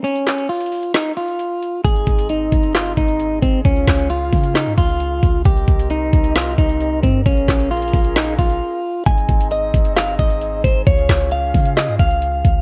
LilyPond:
<<
  \new Staff \with { instrumentName = "Flute section" } { \time 4/4 \key aes \major \tempo 4 = 133 << { r1 | <c' ees' ees''>1 | <des' f' f''>1 | <c' g' ees''>1 |
<des' aes' f''>1 | <c' ees' ees''>1 | <des' f' f''>1 | } \\ { r1 | aes'1~ | aes'1 | bes'1 |
bes'1 | aes'1~ | aes'1 | } >> }
  \new Staff \with { instrumentName = "Clean electric guitar" } { \time 4/4 \key aes \major des'4 f'4 ees'8 f'4. | aes'4 ees'4 f'8 ees'4 c'8 | des'4 f'4 ees'8 f'4. | g'4 ees'4 f'8 ees'4 c'8 |
des'4 f'4 ees'8 f'4. | aes''4 ees''4 f''8 ees''4 c''8 | des''4 f''4 ees''8 f''4. | }
  \new Staff \with { instrumentName = "808-style bass" } { \clef bass \time 4/4 \key aes \major r1 | aes,,8 aes,,4 g,,4 aes,,4 aes,,8 | des,8 des,4 des8. aes,16 des,4 des,8 | c,8 c,4 c,4 c,4 g,8 |
bes,,8 bes,,4 bes,,4 bes,,8 r4 | aes,,8 aes,,4 g,,4 aes,,4 aes,,8 | des,8 des,4 des8. aes,16 des,4 des,8 | }
  \new DrumStaff \with { instrumentName = "Drums" } \drummode { \time 4/4 hh16 hh16 <hc hh sn>16 hh16 hh32 hh32 hh32 hh32 hho16 hh16 <hc hh sn>16 hh16 hh16 hh16 hh8 hh8 | <hh bd>16 hh16 <hh bd>16 hh16 hh8 <hh bd>16 hh16 <hc hh sn>16 hh16 <hh bd>16 hh16 hh8 <hh bd>8 | <hh bd>16 hh16 <hc hh bd sn>16 hh16 hh8 <hho bd>16 hh16 <hc hh sn>16 hh16 <hh bd>16 hh16 hh8 <hh bd>8 | <hh bd>16 hh16 <hh bd>16 hh16 hh8 <hh bd>16 hh16 <hc hh sn>16 hh16 <hh bd>16 hh16 hh8 <hh bd>8 |
<hh bd>16 hh16 <hc hh bd sn>16 hh16 hh32 hh32 hh32 hh32 <hho bd>16 hh16 <hc hh sn>16 hh16 <hh bd>16 hh16 r4 | <hh bd>16 hh16 <hh bd>16 hh16 hh8 <hh bd>16 hh16 <hc hh sn>16 hh16 <hh bd>16 hh16 hh8 <hh bd>8 | <hh bd>16 hh16 <hc hh bd sn>16 hh16 hh8 <hho bd>16 hh16 <hc hh sn>16 hh16 <hh bd>16 hh16 hh8 <hh bd>8 | }
>>